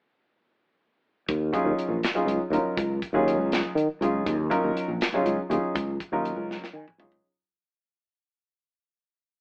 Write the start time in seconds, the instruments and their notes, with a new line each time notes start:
1.28 fretless electric bass D#2, kick, closed hi-hat
1.52 grand piano F#3 C#4 D#4 F4 G#4, kick, closed hi-hat
1.65 fretless electric bass D#2
1.77 muted fretless electric bass stroke, closed hi-hat
1.89 fretless electric bass A#1
2.03 snare, closed hi-hat
2.14 grand piano F#3 C#4 D#4 F4 G#4, muted fretless electric bass stroke
2.26 fretless electric bass C#2, closed hi-hat
2.50 fretless electric bass D#2, grand piano F#3 C#4 D#4 F4 A#4, closed hi-hat
2.63 muted fretless electric bass stroke
2.77 fretless electric bass C#2, kick, closed hi-hat
3.02 kick, closed hi-hat
3.13 fretless electric bass D#2, grand piano F#3 C#4 D#4 F4 G#4
3.28 closed hi-hat
3.38 fretless electric bass C#2
3.52 snare, closed hi-hat
3.63 muted fretless electric bass stroke
3.75 fretless electric bass D#3, closed hi-hat
4.01 fretless electric bass C#2, grand piano F#3 C#4 D#4 F4 G#4, closed hi-hat
4.26 fretless electric bass D#2, kick, closed hi-hat
4.50 grand piano F#3 C#4 D#4 F4 A#4, kick, closed hi-hat
4.64 fretless electric bass D#2
4.76 muted fretless electric bass stroke, closed hi-hat
4.88 fretless electric bass A#1
5.01 snare, closed hi-hat
5.13 grand piano F#3 C#4 D#4 F4 G#4, muted fretless electric bass stroke
5.26 fretless electric bass C#2, closed hi-hat
5.49 fretless electric bass D#2, grand piano F#3 C#4 D#4 F4 G#4, closed hi-hat
5.75 fretless electric bass C#2, kick, closed hi-hat
6.00 kick, closed hi-hat
6.12 fretless electric bass D#2, grand piano F#3 C#4 D#4 F4 A#4
6.25 closed hi-hat
6.37 fretless electric bass C#2
6.51 snare
6.62 muted fretless electric bass stroke, snare
6.73 fretless electric bass D#3, grand piano G#5
6.88 mid tom
6.98 fretless electric bass C#2, grand piano F#3 C#4 D#4 F4 G#4 C#5, floor tom
7.12 floor tom